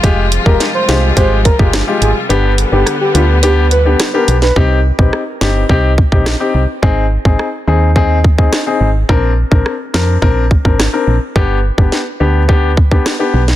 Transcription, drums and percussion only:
0.04 kick, closed hi-hat
0.32 closed hi-hat
0.46 kick
0.60 snare, closed hi-hat
0.89 snare, closed hi-hat
1.17 kick, closed hi-hat
1.45 kick, closed hi-hat
1.59 kick
1.73 cross-stick, snare, closed hi-hat
2.02 closed hi-hat
2.30 closed hi-hat
2.58 closed hi-hat
2.86 cross-stick, closed hi-hat
3.15 closed hi-hat
3.43 closed hi-hat
3.71 closed hi-hat
4.00 cross-stick, snare, closed hi-hat
4.28 closed hi-hat
4.42 snare
4.56 kick
4.99 kick
5.13 cross-stick
5.41 snare
5.69 kick
5.98 kick
6.12 kick
6.26 cross-stick, snare
6.83 kick
7.25 kick
7.39 cross-stick
7.96 kick
8.24 kick
8.38 kick
8.53 cross-stick, snare
9.09 kick
9.52 kick
9.66 cross-stick
9.94 snare
10.22 kick
10.51 kick
10.65 kick
10.80 cross-stick, snare
11.36 kick
11.78 kick
11.92 snare
12.49 kick
12.77 kick
12.91 kick
13.06 cross-stick, snare
13.48 snare

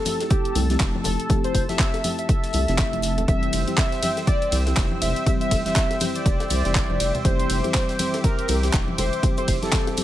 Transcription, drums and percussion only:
0.05 closed hi-hat, open hi-hat, high conga
0.20 snare, closed hi-hat, high bongo
0.30 kick, closed hi-hat
0.45 closed hi-hat
0.55 closed hi-hat, open hi-hat, high bongo, high conga
0.70 snare, closed hi-hat
0.80 kick, snare, clap, closed hi-hat
0.95 high conga
1.04 closed hi-hat, open hi-hat, high bongo, low conga
1.20 closed hi-hat
1.29 kick, closed hi-hat, high conga
1.44 closed hi-hat, high bongo
1.55 kick, closed hi-hat, open hi-hat
1.69 snare, closed hi-hat, high conga
1.79 kick, snare, clap, closed hi-hat
1.94 snare, closed hi-hat, high bongo
2.04 closed hi-hat, open hi-hat, high conga
2.18 closed hi-hat
2.29 kick, closed hi-hat, high bongo
2.43 snare, closed hi-hat
2.53 closed hi-hat, open hi-hat, high conga
2.68 snare, closed hi-hat
2.78 kick, snare, clap, closed hi-hat, high bongo
2.93 closed hi-hat, high conga
3.02 snare, closed hi-hat, open hi-hat
3.18 closed hi-hat, high bongo, low conga
3.28 kick, closed hi-hat, high bongo, high conga
3.43 closed hi-hat
3.53 closed hi-hat, open hi-hat, ride
3.67 closed hi-hat, high conga
3.77 kick, snare, clap, closed hi-hat, high bongo
3.92 snare, closed hi-hat
4.03 closed hi-hat, open hi-hat, ride, high conga
4.17 snare, closed hi-hat, high bongo
4.27 kick, closed hi-hat
4.42 closed hi-hat
4.51 closed hi-hat, open hi-hat, ride, high conga
4.67 snare, closed hi-hat, high bongo
4.77 kick, snare, clap, closed hi-hat
4.91 high conga
5.01 closed hi-hat, open hi-hat, ride, high bongo, low conga
5.16 closed hi-hat
5.26 kick, closed hi-hat, high conga
5.41 closed hi-hat
5.51 kick, closed hi-hat, open hi-hat, ride, high bongo
5.66 snare, closed hi-hat, high conga
5.75 kick, snare, clap, closed hi-hat
5.91 snare, closed hi-hat, high bongo
6.00 closed hi-hat, open hi-hat, ride, high conga
6.15 closed hi-hat
6.26 kick, closed hi-hat
6.39 snare, closed hi-hat, high bongo
6.50 closed hi-hat, open hi-hat, ride, high conga
6.64 snare, closed hi-hat
6.75 kick, snare, clap, closed hi-hat, high bongo
6.90 high conga
7.00 snare, closed hi-hat, open hi-hat, ride
7.15 closed hi-hat, low conga
7.25 kick, closed hi-hat, high bongo, high conga
7.39 closed hi-hat
7.50 closed hi-hat, open hi-hat, ride
7.64 closed hi-hat, high bongo, high conga
7.74 kick, snare, clap, closed hi-hat
7.89 snare, closed hi-hat
7.99 closed hi-hat, open hi-hat, ride, high conga
8.14 snare, closed hi-hat, high bongo
8.24 kick, closed hi-hat
8.39 closed hi-hat
8.48 closed hi-hat, open hi-hat, ride, high bongo, high conga
8.63 snare, closed hi-hat
8.73 kick, snare, clap, closed hi-hat
8.88 high conga
8.98 closed hi-hat, open hi-hat, ride, high bongo, low conga
9.13 closed hi-hat
9.23 kick, closed hi-hat, high conga
9.37 closed hi-hat, high bongo
9.48 kick, closed hi-hat, open hi-hat, ride
9.62 snare, closed hi-hat, high conga
9.72 kick, snare, clap, closed hi-hat
9.87 snare, closed hi-hat, high bongo
9.97 closed hi-hat, open hi-hat, ride, high conga

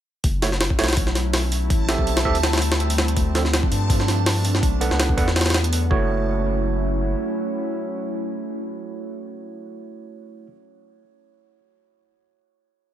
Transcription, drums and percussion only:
0.24 kick, open hi-hat
0.42 snare, open hi-hat
0.52 snare
0.61 snare, open hi-hat
0.70 kick
0.79 snare, open hi-hat
0.84 snare, open hi-hat
0.88 snare, open hi-hat
0.93 snare, open hi-hat
0.97 kick, open hi-hat
1.07 snare
1.15 snare, open hi-hat
1.34 snare, open hi-hat
1.52 open hi-hat
1.70 kick, open hi-hat
1.89 snare, open hi-hat
1.98 kick
2.07 open hi-hat
2.17 snare, open hi-hat
2.25 kick
2.35 open hi-hat
2.43 snare, open hi-hat
2.53 snare, open hi-hat
2.58 snare, open hi-hat
2.62 open hi-hat
2.72 snare, open hi-hat
2.80 closed hi-hat
2.90 open hi-hat
2.98 snare, open hi-hat
3.08 closed hi-hat
3.17 kick, open hi-hat
3.35 snare, open hi-hat
3.45 snare
3.54 snare, open hi-hat
3.63 kick
3.72 open hi-hat
3.90 kick, open hi-hat
4.00 snare
4.08 snare, open hi-hat
4.26 snare, open hi-hat
4.45 open hi-hat
4.55 snare
4.63 kick, open hi-hat
4.81 open hi-hat
4.91 snare
5.00 snare, open hi-hat
5.09 kick
5.18 kick, open hi-hat
5.28 snare
5.36 snare, open hi-hat
5.41 snare, open hi-hat
5.46 snare, open hi-hat
5.50 snare, open hi-hat
5.54 snare, open hi-hat
5.64 closed hi-hat
5.73 open hi-hat
5.91 kick

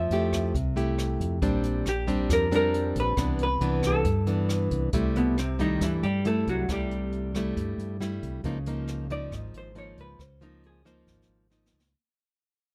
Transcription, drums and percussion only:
0.11 closed hi-hat
0.33 kick, cross-stick, closed hi-hat
0.55 kick, closed hi-hat
0.77 closed hi-hat
0.98 cross-stick, closed hi-hat
1.20 kick, closed hi-hat
1.42 kick, closed hi-hat
1.63 closed hi-hat
1.86 cross-stick, closed hi-hat
2.08 kick, closed hi-hat
2.30 kick, cross-stick, closed hi-hat
2.52 closed hi-hat
2.74 closed hi-hat
2.95 kick, closed hi-hat
3.17 kick, cross-stick, closed hi-hat
3.39 closed hi-hat
3.61 closed hi-hat
3.83 kick, cross-stick, closed hi-hat
4.05 kick, closed hi-hat
4.27 closed hi-hat
4.49 cross-stick, closed hi-hat
4.71 kick, closed hi-hat
4.93 kick, closed hi-hat
5.16 closed hi-hat
5.38 cross-stick, closed hi-hat
5.59 kick, closed hi-hat
5.81 kick, cross-stick, closed hi-hat
6.03 closed hi-hat
6.25 closed hi-hat
6.47 kick, closed hi-hat
6.69 kick, cross-stick, closed hi-hat
6.91 closed hi-hat
7.12 closed hi-hat
7.35 kick, cross-stick, closed hi-hat
7.57 kick, closed hi-hat
7.79 closed hi-hat
8.01 cross-stick, closed hi-hat
8.22 kick, closed hi-hat
8.44 kick, closed hi-hat
8.66 closed hi-hat
8.87 cross-stick, closed hi-hat
9.10 kick, closed hi-hat
9.32 kick, cross-stick, closed hi-hat
9.54 closed hi-hat
9.75 closed hi-hat
9.97 kick, closed hi-hat
10.19 kick, cross-stick, closed hi-hat
10.42 closed hi-hat
10.63 closed hi-hat
10.85 kick, cross-stick, closed hi-hat
11.07 kick, snare
11.22 snare
11.51 snare
11.66 snare
11.80 snare

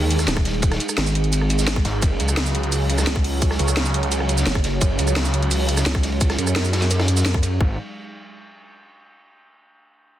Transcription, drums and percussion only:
0.11 closed hi-hat, ride, shaker
0.19 cross-stick, snare, closed hi-hat, shaker
0.28 snare, closed hi-hat, ride, shaker
0.37 kick, cross-stick
0.45 snare, closed hi-hat, ride
0.54 ride
0.62 kick, closed hi-hat, ride, shaker
0.72 cross-stick, snare, closed hi-hat
0.80 closed hi-hat, ride, shaker
0.89 cross-stick, shaker
0.97 snare, closed hi-hat, ride
1.06 ride, shaker
1.15 closed hi-hat, ride
1.24 closed hi-hat
1.33 closed hi-hat, ride, shaker
1.41 cross-stick
1.50 closed hi-hat, ride, shaker
1.58 snare, closed hi-hat, shaker
1.67 snare, closed hi-hat, ride, shaker
1.76 kick, cross-stick
1.85 snare, closed hi-hat, ride
2.02 kick, closed hi-hat, ride, shaker
2.20 closed hi-hat, ride, shaker
2.29 cross-stick, shaker
2.37 snare, closed hi-hat, ride
2.46 snare, shaker
2.55 closed hi-hat, ride
2.63 closed hi-hat
2.72 closed hi-hat, open hi-hat, shaker
2.89 closed hi-hat, ride, shaker
2.98 cross-stick, snare, closed hi-hat, shaker
3.07 snare, closed hi-hat, ride, shaker
3.16 kick, cross-stick
3.24 closed hi-hat, open hi-hat
3.42 kick, closed hi-hat, ride, shaker
3.51 cross-stick, snare
3.59 closed hi-hat, ride, shaker
3.68 cross-stick, shaker
3.77 snare, closed hi-hat, ride
3.85 ride, shaker
3.94 closed hi-hat, ride
4.03 closed hi-hat
4.12 closed hi-hat, ride, shaker
4.20 cross-stick
4.29 closed hi-hat, ride, shaker
4.38 snare, closed hi-hat, shaker
4.46 snare, closed hi-hat, ride, shaker
4.55 kick, cross-stick
4.64 snare, closed hi-hat, ride
4.81 kick, closed hi-hat, ride, shaker
4.99 closed hi-hat, ride, shaker
5.08 cross-stick, shaker
5.16 snare, closed hi-hat, ride
5.25 snare, shaker
5.34 closed hi-hat, ride
5.42 closed hi-hat
5.51 closed hi-hat, open hi-hat, shaker
5.68 closed hi-hat, ride, shaker
5.77 cross-stick, snare, closed hi-hat, shaker
5.86 snare, closed hi-hat, ride, shaker
5.95 kick, cross-stick
6.03 snare, closed hi-hat, ride
6.12 ride
6.21 kick, closed hi-hat, ride, shaker
6.29 cross-stick, snare, closed hi-hat
6.38 closed hi-hat, ride, shaker
6.47 cross-stick, shaker
6.56 snare, closed hi-hat, ride
6.64 ride, shaker
6.73 snare, closed hi-hat, ride
6.82 snare, closed hi-hat, shaker
6.90 snare, closed hi-hat, ride, shaker
6.99 cross-stick, snare, ride
7.08 closed hi-hat, shaker
7.17 snare, closed hi-hat, ride, shaker
7.26 snare, closed hi-hat, shaker
7.34 kick, cross-stick
7.43 closed hi-hat, ride, shaker
7.61 kick

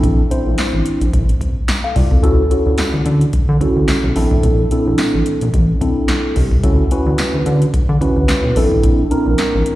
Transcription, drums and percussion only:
0.03 kick, closed hi-hat
0.31 closed hi-hat
0.58 snare, clap, closed hi-hat, tambourine
0.86 closed hi-hat
1.01 closed hi-hat
1.13 kick, closed hi-hat
1.29 closed hi-hat
1.41 kick, closed hi-hat
1.68 snare, clap, closed hi-hat, tambourine
1.96 kick, open hi-hat
2.11 kick
2.23 kick, closed hi-hat
2.51 closed hi-hat
2.78 snare, clap, closed hi-hat, tambourine
3.06 closed hi-hat
3.21 closed hi-hat
3.33 kick, closed hi-hat
3.61 kick, closed hi-hat
3.88 snare, clap, closed hi-hat, tambourine
4.16 open hi-hat
4.31 kick
4.43 kick, closed hi-hat
4.71 closed hi-hat
4.98 snare, clap, closed hi-hat, tambourine
5.26 closed hi-hat
5.41 closed hi-hat
5.54 kick, closed hi-hat
5.81 kick, closed hi-hat
6.08 snare, clap, closed hi-hat, tambourine
6.36 kick, open hi-hat
6.51 kick
6.64 kick, closed hi-hat
6.91 closed hi-hat
7.18 snare, clap, closed hi-hat, tambourine
7.46 closed hi-hat
7.62 closed hi-hat
7.74 kick, closed hi-hat
8.01 kick, closed hi-hat
8.28 snare, clap, closed hi-hat, tambourine
8.56 open hi-hat
8.72 kick
8.83 kick, closed hi-hat
9.11 closed hi-hat
9.38 snare, clap, closed hi-hat, tambourine
9.66 closed hi-hat

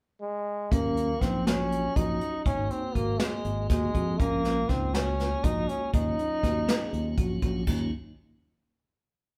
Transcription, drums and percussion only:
0.72 kick, closed hi-hat
0.97 closed hi-hat
1.21 kick, snare, closed hi-hat
1.47 snare, closed hi-hat
1.72 closed hi-hat
1.96 kick, closed hi-hat
2.21 closed hi-hat
2.46 kick, closed hi-hat
2.70 closed hi-hat
2.95 kick, closed hi-hat
3.20 snare, closed hi-hat
3.44 closed hi-hat
3.69 kick, snare, closed hi-hat
3.95 kick, closed hi-hat
4.20 kick, closed hi-hat
4.44 snare, closed hi-hat
4.69 kick, snare, closed hi-hat
4.94 snare, closed hi-hat
5.20 snare, closed hi-hat
5.44 kick, closed hi-hat
5.69 closed hi-hat
5.93 kick, closed hi-hat
6.19 closed hi-hat
6.43 kick, snare, closed hi-hat
6.68 snare, closed hi-hat
6.93 closed hi-hat
7.17 kick, closed hi-hat
7.42 kick, closed hi-hat
7.67 kick, crash

